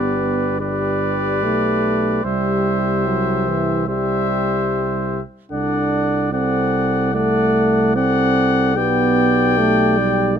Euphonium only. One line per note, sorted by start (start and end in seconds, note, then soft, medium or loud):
0.00 0.61 B3 medium
0.62 1.45 G3 medium
1.43 2.24 A3 medium
2.24 3.08 G3 medium
3.06 3.49 F#3 medium
3.47 3.87 E3 medium
3.88 5.08 G3 medium
5.51 6.29 D4 medium
6.32 7.12 C4 medium
7.13 7.97 A3 medium
7.95 8.76 C4 medium
8.76 9.59 B3 medium
9.58 9.99 A3 medium
9.97 10.39 G3 medium